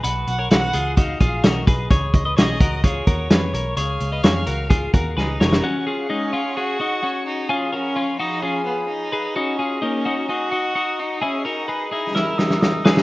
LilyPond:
<<
  \new Staff \with { instrumentName = "Glockenspiel" } { \time 4/4 \key fis \major \tempo 4 = 129 r1 | r1 | r1 | r1 |
r1 | r1 | r2 e'''8 dis'''8 dis'''4 | }
  \new Staff \with { instrumentName = "String section" } { \time 4/4 \key fis \major << { r1 | r1 | r1 | <gis' fis'' cis'''>1 |
<eis gis' eis'' b''>1 | <fis' dis'' ais''>1 | <gis' gis''>1 | } \\ { r1 | r1 | r1 | cis''1~ |
cis''1~ | cis''1 | r1 | } >> }
  \new Staff \with { instrumentName = "Clean electric guitar" } { \time 4/4 \key fis \major <fis' b'>8. <ais' cis''>16 <fis' b'>8 <eis' gis'>8 <dis' fis'>8 <eis' gis'>8 <fis' ais'>8 <gis' b'>8 | <gis' cis''>8. <b' dis''>16 <gis' cis''>8 <fis' ais'>8 <eis' gis'>8 <fis' ais'>8 <gis' b'>8 <ais' cis''>8 | <gis' cis''>8. <b' dis''>16 <gis' cis''>8 <fis' ais'>8 <eis' gis'>8 <fis' ais'>8 <gis' b'>8 <ais' cis''>8 | <cis' fis'>8 <eis' gis'>8 <gis dis'>8 <cis' eis'>8 <cis' gis'>8 <dis' fis'>8 <cis' fis'>4 |
<eis' gis'>8 <fis' ais'>8 <cis' eis'>8 <dis' fis'>8 <eis' gis'>4. <gis' b'>8 | <dis' fis'>8 <eis' gis'>8 <ais dis'>8 <dis' fis'>8 <dis' gis'>8 <dis' fis'>8 <dis' fis'>4 | <e' gis'>8 <fis' ais'>8 <gis' b'>8 <e' gis'>8 <e' ais'>4. <gis' b'>8 | }
  \new Staff \with { instrumentName = "Violin" } { \time 4/4 \key fis \major r8 fis''8 fis''4 eis''4 dis''4 | r8 dis''8 dis''4 cis''2 | eis''2. dis'4 | cis'4 cis'4 fis'4. dis'8 |
cis'8 cis'4 dis'8 cis'8 b8 dis'4 | cis'4 cis'4 fis'4. dis'8 | cis'8 dis'4 dis'8 e'8 dis'8 dis'4 | }
  \new Staff \with { instrumentName = "Picked electric bass" } { \clef bass \time 4/4 \key fis \major b,,8 b,,8 b,,8 cis,4 ais,,8 b,,8 b,,8 | cis,8 cis,8 b,,8 cis,4 dis,8 eis,8 b,,8 | cis,8 cis,8 eis,8 cis,4 dis,8 cis,8 eis,,8 | r1 |
r1 | r1 | r1 | }
  \new DrumStaff \with { instrumentName = "Drums" } \drummode { \time 4/4 hh8 hh8 <hh sn>8 hh8 <hh bd>8 <hh bd>8 <hh sn>8 <hh bd>8 | <hh bd>8 <hh bd>8 <hh sn>8 <hh bd>8 <hh bd>8 <hh bd>8 <hh sn>8 hh8 | hh8 hh8 <hh sn>8 hh8 <hh bd>8 <hh bd>8 sn8 sn16 sn16 | r4 r4 r4 r4 |
r4 r4 r4 r4 | r4 r4 r4 r4 | r4 r4 sn8 sn16 sn16 sn8 sn16 sn16 | }
>>